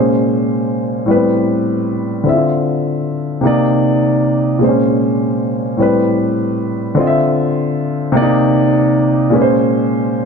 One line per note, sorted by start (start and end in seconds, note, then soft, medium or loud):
0.00 1.07 A#2 medium
0.00 1.08 G#3 medium
0.00 1.09 C#4 medium
0.00 1.10 C5 medium
1.06 2.25 A2 medium
1.06 2.26 G3 medium
1.06 1.15 B3 soft
1.11 2.27 B4 medium
1.16 2.24 C4 medium
2.24 3.42 D3 medium
2.24 3.43 C4 medium
2.24 2.33 E4 soft
2.29 3.45 E5 medium
2.34 3.47 F4 medium
3.41 4.60 C3 medium
3.41 4.61 A#3 medium
3.41 4.62 D#4 medium
3.47 4.63 D5 medium
4.59 5.77 A#2 medium
4.59 5.78 G#3 medium
4.59 4.68 C4 soft
4.64 5.80 C5 medium
4.69 5.82 C#4 medium
5.77 6.96 A2 medium
5.77 6.96 G3 medium
5.77 6.96 C4 medium
5.82 6.98 B4 medium
6.95 8.13 D3 medium
6.95 8.14 C4 medium
6.99 8.15 F4 medium
6.99 7.05 D#5 medium
7.07 8.19 E5 medium
8.12 9.31 C3 medium
8.12 9.31 A#3 medium
8.12 8.21 D4 medium
8.17 9.33 D5 medium
8.22 9.35 D#4 medium
9.30 10.25 A#2 medium
9.30 10.25 G#3 medium
9.30 10.25 C#4 medium
9.35 9.40 B4 medium
9.42 10.25 C5 medium